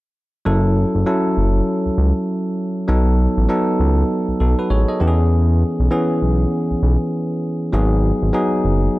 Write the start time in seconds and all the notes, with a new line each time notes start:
0.45 F#1 F#3 C#4 E4 A4
0.95 F#1
1.06 F#3 C#4 E4 A4
1.37 F#1
1.86 C#2
1.98 C#2
2.88 B1 F#3 B3 D#4 A4
3.37 A1
3.48 F#3 B3 D#4 A4
3.79 C#2
4.28 B1
4.40 B1 D#4 A4
4.59 F#4 B4
4.70 A1 G#4 C#5
4.88 A4 D#5
5.00 E2 E3 B3 C#4 G4
5.08 G#4
5.79 B1
5.91 E3 B3 C#4 G#4
6.22 B1
6.71 B1
6.82 B1
7.73 G#1 F#3 B3 D#4 G#4
8.22 G#1
8.33 F#3 B3 D#4 G#4
8.64 F#1